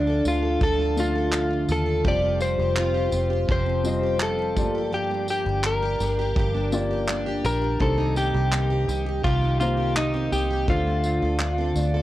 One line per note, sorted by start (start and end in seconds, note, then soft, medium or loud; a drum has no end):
0.00 0.21 D2 loud
0.00 0.60 D3 medium
0.00 0.60 F3 medium
0.00 0.23 A3 medium
0.00 0.51 A3 medium
0.00 0.27 D4 medium
0.00 0.51 D4 medium
0.00 0.96 D4 medium
0.00 0.25 F4 medium
0.00 0.55 F4 medium
0.00 0.41 A4 medium
0.00 0.52 D5 medium
0.06 0.95 D4 medium
0.06 0.41 A4 medium
0.24 0.58 D2 medium
0.24 0.77 A3 medium
0.24 0.79 F4 medium
0.24 0.63 F4 medium
0.24 tambourine medium
0.42 1.13 A4 medium
0.42 0.60 A4 medium
0.60 1.65 D2 medium
0.60 2.12 D3 medium
0.60 2.03 F3 medium
0.60 1.14 A4 medium
0.60 0.99 A4 medium
0.60 kick loud
0.78 1.31 A3 medium
0.78 1.33 F4 medium
0.96 1.97 A3 medium
0.96 1.48 D4 medium
0.96 1.97 D4 medium
0.96 2.12 D4 medium
0.96 1.98 F4 medium
0.96 1.72 F4 medium
0.96 1.98 A4 medium
0.96 tambourine medium
1.14 1.84 A4 medium
1.14 1.49 A4 medium
1.32 1.67 A3 medium
1.32 1.68 F4 medium
1.32 clap loud
1.50 2.11 D4 medium
1.50 1.85 A4 medium
1.68 2.02 D#2 medium
1.68 2.12 A3 medium
1.68 2.22 F4 medium
1.68 2.07 A4 medium
1.68 tambourine medium
1.86 2.11 A4 medium
1.86 2.04 A4 medium
2.04 2.55 F1 medium
2.04 3.47 F3 medium
2.04 3.48 F3 medium
2.04 3.39 G3 medium
2.04 3.39 C4 medium
2.04 3.39 F4 medium
2.04 2.59 G4 medium
2.04 3.40 C5 medium
2.04 kick loud
2.08 2.41 D5 loud
2.22 2.75 C4 medium
2.22 2.77 F4 medium
2.40 3.84 C4 medium
2.40 2.94 F4 medium
2.40 3.51 C5 loud
2.40 tambourine medium
2.58 3.09 F1 medium
2.58 3.29 G4 medium
2.58 2.94 G4 medium
2.76 3.11 C4 medium
2.76 3.11 F4 medium
2.76 clap loud
2.94 3.83 F4 soft
2.94 3.30 G4 medium
3.12 3.46 F1 medium
3.12 3.64 C4 medium
3.12 3.66 F4 medium
3.12 tambourine medium
3.30 4.01 G4 medium
3.30 3.49 G4 medium
3.47 4.56 F1 loud
3.47 4.55 F3 medium
3.47 4.78 F3 medium
3.47 4.03 G4 medium
3.47 kick loud
3.52 4.18 C5 loud
3.66 4.18 C4 medium
3.66 4.20 F4 medium
3.83 4.56 G3 medium
3.83 4.56 C4 medium
3.83 4.64 C4 medium
3.83 4.36 F4 medium
3.83 4.55 F4 medium
3.83 4.57 D#5 medium
3.83 tambourine medium
4.01 4.73 G4 medium
4.01 4.38 G4 medium
4.19 4.63 C4 medium
4.19 4.78 F4 medium
4.19 4.94 A4 loud
4.19 clap loud
4.37 4.76 F4 medium
4.37 4.74 G4 medium
4.55 5.42 G1 loud
4.55 4.91 G2 medium
4.55 4.90 F3 medium
4.55 4.63 A3 medium
4.55 5.90 F4 medium
4.55 5.91 G4 medium
4.55 5.91 D5 medium
4.55 kick medium
4.55 tambourine medium
4.62 5.93 A#3 medium
4.73 5.44 G4 medium
4.73 4.93 G4 medium
4.91 6.35 G2 medium
4.91 6.34 F3 medium
4.91 5.46 G4 medium
4.91 5.27 G4 medium
5.09 5.63 A#3 medium
5.09 5.63 D4 medium
5.27 6.72 A#3 medium
5.27 5.80 D4 medium
5.27 5.66 G4 medium
5.27 tambourine medium
5.45 5.96 G1 medium
5.45 6.17 G4 medium
5.45 5.82 G4 medium
5.63 6.00 A#3 medium
5.63 5.99 D4 medium
5.63 7.05 A#4 medium
5.63 clap loud
5.82 6.71 D4 medium
5.82 6.19 G4 medium
6.00 6.33 G1 medium
6.00 6.54 A#3 medium
6.00 6.53 D4 medium
6.00 tambourine medium
6.18 6.90 G4 medium
6.18 6.37 G4 medium
6.35 7.40 G1 loud
6.35 7.88 G2 medium
6.35 7.79 F3 medium
6.35 6.90 G4 medium
6.35 kick loud
6.54 7.07 A#3 medium
6.54 7.07 D4 medium
6.72 7.73 A#3 loud
6.72 8.16 A#3 medium
6.72 7.25 D4 medium
6.72 7.73 F4 medium
6.72 7.73 G4 medium
6.72 7.73 D5 loud
6.72 tambourine medium
6.90 7.61 G4 medium
6.90 7.26 G4 medium
7.08 7.43 A#3 medium
7.08 7.43 D4 medium
7.08 clap loud
7.26 7.88 D4 medium
7.26 7.61 G4 medium
7.44 7.77 A#1 loud
7.44 7.97 A#3 medium
7.44 7.87 D4 medium
7.44 7.81 A#4 loud
7.44 tambourine medium
7.62 8.33 G4 medium
7.62 7.80 G4 medium
7.79 8.30 C2 loud
7.79 9.23 C3 medium
7.79 9.23 D#3 medium
7.79 9.14 A#3 medium
7.79 9.14 D#4 medium
7.79 8.33 G4 medium
7.79 9.14 G4 medium
7.79 8.17 A4 loud
7.79 9.15 C5 medium
7.79 kick loud
7.97 8.50 A#3 medium
7.97 8.50 D#4 medium
8.15 9.59 A#3 medium
8.15 8.69 C4 medium
8.15 9.24 G4 loud
8.15 tambourine medium
8.33 8.84 C2 loud
8.33 9.04 G4 medium
8.33 8.69 G4 medium
8.52 8.86 A#3 medium
8.52 8.87 D#4 medium
8.52 clap loud
8.69 9.60 C4 medium
8.69 9.05 G4 medium
8.88 9.21 C2 loud
8.88 9.41 A#3 medium
8.88 9.40 D#4 medium
8.88 tambourine medium
9.05 9.77 G4 medium
9.05 9.24 G4 medium
9.24 10.28 C2 loud
9.24 10.68 C3 medium
9.24 10.75 D#3 medium
9.24 9.58 F4 medium
9.24 9.76 G4 medium
9.24 kick loud
9.42 9.95 A#3 medium
9.42 9.95 D#4 medium
9.60 10.61 A#3 medium
9.60 10.76 A#3 medium
9.60 10.14 C4 medium
9.60 10.61 D#4 medium
9.60 9.94 F4 medium
9.60 10.61 G4 medium
9.60 10.62 C5 medium
9.60 tambourine medium
9.77 10.13 G4 medium
9.77 10.49 G4 medium
9.96 10.30 A#3 medium
9.96 10.31 D#4 medium
9.96 10.30 D#4 medium
9.96 clap loud
10.14 11.04 C4 medium
10.14 10.49 G4 medium
10.31 10.65 C2 medium
10.31 10.68 A#3 medium
10.31 10.75 D#4 medium
10.31 10.66 G4 medium
10.31 tambourine medium
10.50 10.75 G4 medium
10.50 10.68 G4 medium
10.68 11.18 D2 loud
10.68 12.02 D3 medium
10.68 12.02 A3 medium
10.68 10.85 A3 medium
10.68 12.02 D4 medium
10.68 12.02 F4 medium
10.68 11.21 A4 medium
10.68 12.02 C5 medium
10.68 kick loud
10.86 11.39 A3 medium
10.86 11.39 D4 medium
11.04 11.58 C4 medium
11.04 12.02 C4 medium
11.04 tambourine medium
11.22 11.72 D2 loud
11.22 11.93 F4 medium
11.22 11.57 A4 medium
11.39 11.74 A3 medium
11.39 11.75 D4 medium
11.39 clap loud
11.58 12.02 C4 medium
11.58 11.93 A4 medium
11.76 12.02 D2 medium
11.76 12.02 A3 medium
11.76 12.02 D4 medium
11.76 11.93 D5 medium
11.76 tambourine medium
11.94 12.02 F4 medium
11.94 12.02 A4 medium
11.94 12.02 F5 medium